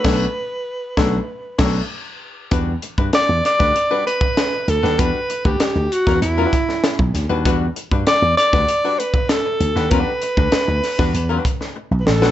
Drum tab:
CC |x---------x-----|----------------|----------------|----------------|
HH |----------------|x-x-x-x-x-x-x-x-|x-x-x-x-x-x-x-x-|x-x-x-x-x-x-x-x-|
SD |o-----o---o-----|----o-oo----o--o|----o--o---oo-o-|----o-oo----o--o|
BD |o-----o---o-----|o--o---o---o----|o--o---o--o--o--|o--o---o---o----|

CC |----------------|
HH |x-x-x-o-x-x-----|
SD |----o-oo---o--oo|
BD |o--o---o--o-----|